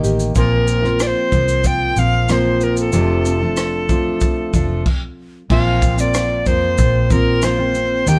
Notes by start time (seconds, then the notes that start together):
Already playing: D#3 A#3 D#4 G4
0.03 A1 G4, shaker
0.19 shaker
0.35 A#1 A#2 F3 A#3 C4 F4 A#4, kick, shaker
0.68 A#3, shaker
0.83 A#3 C4 F4, cross-stick
1.00 C4 D5, cross-stick, shaker
1.07 C5
1.32 C2 F3 A#3 C4 F4, kick, shaker
1.48 shaker
1.64 F4 G5, kick, shaker
1.96 A#1 F3 A#3 C4 F4 F5, shaker
2.28 A#2 F3 A#3 C4 F4 C5, cross-stick, shaker
2.61 F4 A#4, shaker
2.77 A4, shaker
2.92 F1 F2 C3 F3 A3 D4 F4 A4, shaker
3.25 C4, shaker
3.40 F3 A3 D4 F4
3.57 D4, cross-stick, shaker
3.88 F3 A3 C4 D4 F4, kick, shaker
4.21 A4, kick, shaker
4.53 F1 F3 A3 D4 F4, kick, shaker
4.86 kick, crash
5.49 A#1 A#2 F3 A#3 C4 F4 F5, kick, crash
5.82 C4, kick, shaker
5.98 A#3 C4 F4 D5, shaker
6.14 F4, cross-stick, shaker
6.46 F2 F3 A#3 C4 F4 C5, kick, shaker
6.78 A#1 F4, kick, shaker
7.10 F3 A#3 C4 F4 A#4, kick, shaker
7.42 F3 A#3 C4 F4 C5, cross-stick, shaker
7.58 A#3 C4 F4
7.75 C4, shaker
8.06 D#2 D#3 A#3 D#4 G4 G5, shaker